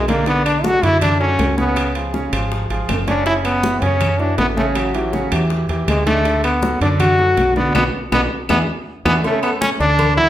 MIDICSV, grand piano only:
0, 0, Header, 1, 2, 480
1, 0, Start_track
1, 0, Key_signature, 3, "major"
1, 0, Tempo, 373832
1, 349, Time_signature, 4, 2, 24, 8
1, 13214, End_track
2, 0, Start_track
2, 0, Title_t, "Grand piano"
2, 0, Program_c, 0, 0
2, 102, Note_on_c, 0, 50, 86
2, 107, Note_on_c, 0, 62, 89
2, 112, Note_on_c, 0, 74, 85
2, 302, Note_off_c, 0, 50, 0
2, 305, Note_off_c, 0, 62, 0
2, 308, Note_off_c, 0, 74, 0
2, 347, Note_on_c, 0, 50, 73
2, 350, Note_on_c, 0, 62, 75
2, 355, Note_on_c, 0, 74, 75
2, 741, Note_off_c, 0, 50, 0
2, 744, Note_off_c, 0, 62, 0
2, 746, Note_off_c, 0, 74, 0
2, 827, Note_on_c, 0, 54, 58
2, 832, Note_on_c, 0, 66, 64
2, 837, Note_on_c, 0, 69, 62
2, 1025, Note_off_c, 0, 54, 0
2, 1028, Note_off_c, 0, 66, 0
2, 1031, Note_off_c, 0, 69, 0
2, 1066, Note_on_c, 0, 50, 81
2, 1068, Note_on_c, 0, 62, 83
2, 1073, Note_on_c, 0, 74, 73
2, 1461, Note_off_c, 0, 50, 0
2, 1462, Note_off_c, 0, 62, 0
2, 1465, Note_off_c, 0, 74, 0
2, 1546, Note_on_c, 0, 54, 70
2, 1546, Note_on_c, 0, 66, 73
2, 1550, Note_on_c, 0, 69, 75
2, 1941, Note_off_c, 0, 54, 0
2, 1941, Note_off_c, 0, 66, 0
2, 1943, Note_off_c, 0, 69, 0
2, 2023, Note_on_c, 0, 49, 84
2, 2026, Note_on_c, 0, 61, 86
2, 2031, Note_on_c, 0, 73, 89
2, 2419, Note_off_c, 0, 49, 0
2, 2421, Note_off_c, 0, 61, 0
2, 2424, Note_off_c, 0, 73, 0
2, 2512, Note_on_c, 0, 53, 67
2, 2517, Note_on_c, 0, 65, 74
2, 2518, Note_on_c, 0, 68, 69
2, 2708, Note_off_c, 0, 53, 0
2, 2711, Note_off_c, 0, 65, 0
2, 2712, Note_off_c, 0, 68, 0
2, 2742, Note_on_c, 0, 49, 71
2, 2745, Note_on_c, 0, 61, 72
2, 2750, Note_on_c, 0, 73, 69
2, 2942, Note_off_c, 0, 49, 0
2, 2944, Note_off_c, 0, 61, 0
2, 2947, Note_off_c, 0, 73, 0
2, 2990, Note_on_c, 0, 53, 76
2, 2991, Note_on_c, 0, 65, 66
2, 2999, Note_on_c, 0, 68, 65
2, 3384, Note_off_c, 0, 53, 0
2, 3385, Note_off_c, 0, 65, 0
2, 3389, Note_off_c, 0, 68, 0
2, 3475, Note_on_c, 0, 53, 74
2, 3478, Note_on_c, 0, 65, 70
2, 3483, Note_on_c, 0, 68, 70
2, 3867, Note_off_c, 0, 53, 0
2, 3869, Note_off_c, 0, 65, 0
2, 3871, Note_off_c, 0, 68, 0
2, 3946, Note_on_c, 0, 49, 85
2, 3952, Note_on_c, 0, 61, 92
2, 3953, Note_on_c, 0, 73, 86
2, 4145, Note_off_c, 0, 49, 0
2, 4148, Note_off_c, 0, 61, 0
2, 4149, Note_off_c, 0, 73, 0
2, 4188, Note_on_c, 0, 49, 70
2, 4191, Note_on_c, 0, 61, 68
2, 4198, Note_on_c, 0, 73, 75
2, 4583, Note_off_c, 0, 49, 0
2, 4585, Note_off_c, 0, 61, 0
2, 4589, Note_off_c, 0, 73, 0
2, 4665, Note_on_c, 0, 52, 67
2, 4672, Note_on_c, 0, 66, 64
2, 4673, Note_on_c, 0, 64, 58
2, 4864, Note_off_c, 0, 52, 0
2, 4868, Note_off_c, 0, 66, 0
2, 4869, Note_off_c, 0, 64, 0
2, 4901, Note_on_c, 0, 49, 84
2, 4905, Note_on_c, 0, 61, 78
2, 4913, Note_on_c, 0, 73, 88
2, 5299, Note_off_c, 0, 49, 0
2, 5301, Note_off_c, 0, 61, 0
2, 5306, Note_off_c, 0, 73, 0
2, 5385, Note_on_c, 0, 52, 70
2, 5387, Note_on_c, 0, 64, 71
2, 5392, Note_on_c, 0, 66, 70
2, 5782, Note_off_c, 0, 52, 0
2, 5783, Note_off_c, 0, 64, 0
2, 5785, Note_off_c, 0, 66, 0
2, 5868, Note_on_c, 0, 49, 93
2, 5872, Note_on_c, 0, 61, 88
2, 5875, Note_on_c, 0, 73, 84
2, 6263, Note_off_c, 0, 49, 0
2, 6265, Note_off_c, 0, 61, 0
2, 6267, Note_off_c, 0, 73, 0
2, 6350, Note_on_c, 0, 52, 75
2, 6354, Note_on_c, 0, 64, 75
2, 6358, Note_on_c, 0, 67, 73
2, 6548, Note_off_c, 0, 52, 0
2, 6550, Note_off_c, 0, 64, 0
2, 6552, Note_off_c, 0, 67, 0
2, 6586, Note_on_c, 0, 49, 73
2, 6594, Note_on_c, 0, 61, 80
2, 6596, Note_on_c, 0, 73, 72
2, 6785, Note_off_c, 0, 49, 0
2, 6790, Note_off_c, 0, 61, 0
2, 6791, Note_off_c, 0, 73, 0
2, 6832, Note_on_c, 0, 52, 70
2, 6838, Note_on_c, 0, 64, 70
2, 6842, Note_on_c, 0, 67, 74
2, 7226, Note_off_c, 0, 52, 0
2, 7229, Note_off_c, 0, 64, 0
2, 7231, Note_off_c, 0, 67, 0
2, 7314, Note_on_c, 0, 52, 74
2, 7318, Note_on_c, 0, 64, 77
2, 7320, Note_on_c, 0, 67, 76
2, 7707, Note_off_c, 0, 52, 0
2, 7709, Note_off_c, 0, 64, 0
2, 7711, Note_off_c, 0, 67, 0
2, 7784, Note_on_c, 0, 50, 93
2, 7787, Note_on_c, 0, 62, 93
2, 7792, Note_on_c, 0, 74, 81
2, 7984, Note_off_c, 0, 50, 0
2, 7986, Note_off_c, 0, 62, 0
2, 7989, Note_off_c, 0, 74, 0
2, 8034, Note_on_c, 0, 50, 74
2, 8037, Note_on_c, 0, 62, 78
2, 8040, Note_on_c, 0, 74, 70
2, 8427, Note_off_c, 0, 50, 0
2, 8429, Note_off_c, 0, 62, 0
2, 8430, Note_off_c, 0, 74, 0
2, 8510, Note_on_c, 0, 54, 60
2, 8513, Note_on_c, 0, 66, 66
2, 8518, Note_on_c, 0, 69, 71
2, 8708, Note_off_c, 0, 54, 0
2, 8709, Note_off_c, 0, 66, 0
2, 8712, Note_off_c, 0, 69, 0
2, 8755, Note_on_c, 0, 50, 88
2, 8759, Note_on_c, 0, 62, 77
2, 8762, Note_on_c, 0, 74, 81
2, 9147, Note_off_c, 0, 50, 0
2, 9150, Note_off_c, 0, 62, 0
2, 9151, Note_off_c, 0, 74, 0
2, 9231, Note_on_c, 0, 54, 75
2, 9235, Note_on_c, 0, 66, 70
2, 9238, Note_on_c, 0, 69, 74
2, 9625, Note_off_c, 0, 54, 0
2, 9627, Note_off_c, 0, 66, 0
2, 9629, Note_off_c, 0, 69, 0
2, 9712, Note_on_c, 0, 50, 82
2, 9716, Note_on_c, 0, 62, 89
2, 9720, Note_on_c, 0, 74, 86
2, 9909, Note_off_c, 0, 50, 0
2, 9911, Note_off_c, 0, 62, 0
2, 9913, Note_off_c, 0, 74, 0
2, 9947, Note_on_c, 0, 59, 84
2, 9948, Note_on_c, 0, 66, 88
2, 9949, Note_on_c, 0, 62, 92
2, 10102, Note_off_c, 0, 59, 0
2, 10103, Note_off_c, 0, 66, 0
2, 10104, Note_off_c, 0, 62, 0
2, 10430, Note_on_c, 0, 66, 90
2, 10432, Note_on_c, 0, 59, 78
2, 10434, Note_on_c, 0, 62, 84
2, 10584, Note_off_c, 0, 66, 0
2, 10585, Note_off_c, 0, 59, 0
2, 10587, Note_off_c, 0, 62, 0
2, 10907, Note_on_c, 0, 68, 98
2, 10908, Note_on_c, 0, 62, 87
2, 10909, Note_on_c, 0, 64, 93
2, 11062, Note_off_c, 0, 68, 0
2, 11063, Note_off_c, 0, 62, 0
2, 11063, Note_off_c, 0, 64, 0
2, 11623, Note_on_c, 0, 68, 89
2, 11624, Note_on_c, 0, 62, 91
2, 11626, Note_on_c, 0, 64, 94
2, 11779, Note_off_c, 0, 68, 0
2, 11780, Note_off_c, 0, 62, 0
2, 11781, Note_off_c, 0, 64, 0
2, 11867, Note_on_c, 0, 49, 74
2, 11870, Note_on_c, 0, 61, 81
2, 11876, Note_on_c, 0, 73, 82
2, 12065, Note_off_c, 0, 49, 0
2, 12067, Note_off_c, 0, 61, 0
2, 12070, Note_off_c, 0, 73, 0
2, 12116, Note_on_c, 0, 57, 74
2, 12118, Note_on_c, 0, 69, 82
2, 12121, Note_on_c, 0, 81, 71
2, 12506, Note_off_c, 0, 57, 0
2, 12507, Note_off_c, 0, 69, 0
2, 12510, Note_off_c, 0, 81, 0
2, 12590, Note_on_c, 0, 50, 86
2, 12592, Note_on_c, 0, 62, 77
2, 12597, Note_on_c, 0, 74, 89
2, 12982, Note_off_c, 0, 50, 0
2, 12984, Note_off_c, 0, 62, 0
2, 12987, Note_off_c, 0, 74, 0
2, 13064, Note_on_c, 0, 54, 80
2, 13068, Note_on_c, 0, 66, 77
2, 13069, Note_on_c, 0, 78, 74
2, 13214, Note_off_c, 0, 54, 0
2, 13214, Note_off_c, 0, 66, 0
2, 13214, Note_off_c, 0, 78, 0
2, 13214, End_track
0, 0, End_of_file